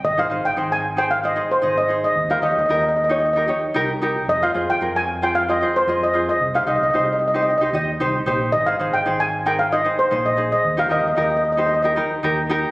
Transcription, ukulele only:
X:1
M:4/4
L:1/16
Q:"Swing 16ths" 1/4=113
K:Ab
V:1 name="Ukulele"
z [EAc] [EAc] z [EAc]2 z [EAc] z [EAc] [EAc] z [EAe] z [EAc]2 | z [EGB] [EGd] z [EGB]2 z [EGd] z [EGB] [EGd] z [EGB] z [EGB]2 | z [FAc] [FAc] z [FAB]2 z [FAc] z [FAc] [FAc] z [FAe] z [FAc]2 | z [EGc] [EGc] z [EGc]2 z [EGc] z [EGc] [EGe] z [EGc] z [EGc]2 |
z [EAc] [EAc] z [EAc]2 z [EAB] z [EAc] [EAc] z [EAc] z [EAc]2 | z [EGB] [EGB] z [EGB]2 z [EGc] z [EGB] [EGB] z [EGB] z [EGB]2 |]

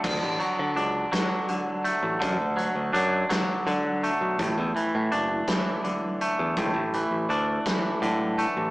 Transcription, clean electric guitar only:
X:1
M:6/8
L:1/8
Q:3/8=55
K:D
V:1 name="Clean electric guitar" clef=bass
D, F, D F, D, A, | D, F, D F, D, A, | A,, E, D E, D, A, | A,, E, D E, D, A, |]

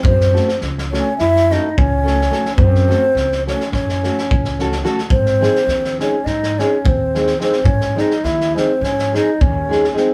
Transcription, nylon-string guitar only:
X:1
M:9/8
L:1/8
Q:3/8=71
K:F#dor
V:1 name="Nylon-string guitar"
z [A,CFA] z [A,CFA] z [A,CFA] z [A,CFA] [A,CFA] | z [A,CFA] z [A,CFA] z [A,CFA] z [A,CFA] [A,CFA] | z [G,^B,DG] z [G,B,DG] z [G,B,DG] z [G,B,DG] [G,B,DG] | z [G,^B,DG] z [G,B,DG] z [G,B,DG] z [G,B,DG] [G,B,DG] |]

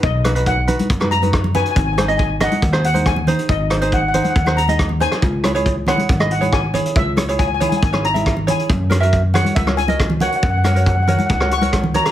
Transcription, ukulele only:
X:1
M:4/4
L:1/16
Q:1/4=138
K:C#dor
V:1 name="Ukulele"
z2 [DFB] [DFB]2 z [DFB]2 z [DFB] z [DFB]2 z [DFB]2 | z2 [DG^B] [DGd]2 z [DGd]2 z [DGB] z [DGB]2 z [DGB]2 | z2 [DG^B] [DGB]2 z [DGB]2 z [DGB] z [DGd]2 z [DGB]2 | z2 [EGc] [EGc]2 z [EGc]2 z [EGd] z [EGc]2 z [EGc]2 |
z2 [EGc] [EGc]2 z [EGc]2 z [EGc] z [EGe]2 z [EGc]2 | z2 [FAc] [FAe]2 z [FAc]2 z [FAc] z [FAd]2 z [FAc]2 | z2 [FAc] [FAc]2 z [FAc]2 z [FAc] z [FAc]2 z [FAc]2 |]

